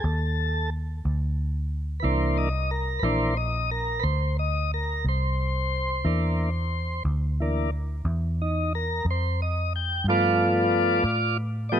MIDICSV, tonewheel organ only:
0, 0, Header, 1, 2, 480
1, 0, Start_track
1, 0, Tempo, 666667
1, 1480, Time_signature, 12, 3, 24, 8
1, 8494, End_track
2, 0, Start_track
2, 0, Title_t, "Tonewheel organ"
2, 0, Program_c, 0, 16
2, 3, Note_on_c, 0, 68, 61
2, 34, Note_off_c, 0, 68, 0
2, 36, Note_on_c, 0, 69, 99
2, 503, Note_off_c, 0, 69, 0
2, 1439, Note_on_c, 0, 71, 64
2, 1458, Note_on_c, 0, 52, 49
2, 1466, Note_on_c, 0, 58, 49
2, 1470, Note_off_c, 0, 71, 0
2, 1470, Note_on_c, 0, 62, 56
2, 1471, Note_on_c, 0, 72, 97
2, 1708, Note_off_c, 0, 72, 0
2, 1711, Note_on_c, 0, 75, 79
2, 1788, Note_off_c, 0, 52, 0
2, 1792, Note_off_c, 0, 58, 0
2, 1794, Note_off_c, 0, 62, 0
2, 1948, Note_off_c, 0, 75, 0
2, 1952, Note_on_c, 0, 70, 79
2, 2156, Note_on_c, 0, 71, 70
2, 2183, Note_on_c, 0, 52, 57
2, 2183, Note_on_c, 0, 58, 50
2, 2188, Note_off_c, 0, 71, 0
2, 2189, Note_off_c, 0, 70, 0
2, 2190, Note_on_c, 0, 72, 112
2, 2194, Note_on_c, 0, 62, 63
2, 2407, Note_off_c, 0, 52, 0
2, 2407, Note_off_c, 0, 58, 0
2, 2413, Note_off_c, 0, 62, 0
2, 2428, Note_off_c, 0, 72, 0
2, 2428, Note_on_c, 0, 75, 101
2, 2666, Note_off_c, 0, 75, 0
2, 2674, Note_on_c, 0, 70, 97
2, 2877, Note_on_c, 0, 71, 70
2, 2904, Note_on_c, 0, 72, 96
2, 2909, Note_off_c, 0, 71, 0
2, 2910, Note_off_c, 0, 70, 0
2, 3145, Note_off_c, 0, 72, 0
2, 3162, Note_on_c, 0, 75, 98
2, 3394, Note_off_c, 0, 75, 0
2, 3412, Note_on_c, 0, 70, 87
2, 3639, Note_off_c, 0, 70, 0
2, 3662, Note_on_c, 0, 72, 95
2, 4352, Note_on_c, 0, 52, 50
2, 4357, Note_on_c, 0, 58, 49
2, 4367, Note_on_c, 0, 62, 56
2, 4676, Note_off_c, 0, 52, 0
2, 4678, Note_off_c, 0, 58, 0
2, 4683, Note_off_c, 0, 62, 0
2, 5063, Note_off_c, 0, 72, 0
2, 5330, Note_on_c, 0, 52, 45
2, 5339, Note_on_c, 0, 58, 47
2, 5342, Note_on_c, 0, 62, 56
2, 5542, Note_off_c, 0, 52, 0
2, 5547, Note_off_c, 0, 58, 0
2, 5549, Note_off_c, 0, 62, 0
2, 6060, Note_on_c, 0, 63, 100
2, 6284, Note_off_c, 0, 63, 0
2, 6300, Note_on_c, 0, 70, 91
2, 6524, Note_off_c, 0, 70, 0
2, 6556, Note_on_c, 0, 72, 81
2, 6773, Note_off_c, 0, 72, 0
2, 6783, Note_on_c, 0, 75, 89
2, 7006, Note_off_c, 0, 75, 0
2, 7025, Note_on_c, 0, 79, 83
2, 7247, Note_off_c, 0, 79, 0
2, 7260, Note_on_c, 0, 53, 55
2, 7265, Note_on_c, 0, 57, 46
2, 7270, Note_on_c, 0, 74, 88
2, 7271, Note_on_c, 0, 59, 52
2, 7272, Note_on_c, 0, 65, 76
2, 7943, Note_off_c, 0, 53, 0
2, 7946, Note_off_c, 0, 57, 0
2, 7949, Note_off_c, 0, 59, 0
2, 8189, Note_off_c, 0, 74, 0
2, 8190, Note_off_c, 0, 65, 0
2, 8418, Note_on_c, 0, 74, 75
2, 8438, Note_on_c, 0, 53, 49
2, 8438, Note_on_c, 0, 67, 86
2, 8440, Note_on_c, 0, 57, 46
2, 8444, Note_on_c, 0, 59, 59
2, 8447, Note_off_c, 0, 74, 0
2, 8448, Note_on_c, 0, 75, 105
2, 8494, Note_off_c, 0, 53, 0
2, 8494, Note_off_c, 0, 57, 0
2, 8494, Note_off_c, 0, 59, 0
2, 8494, Note_off_c, 0, 67, 0
2, 8494, Note_off_c, 0, 75, 0
2, 8494, End_track
0, 0, End_of_file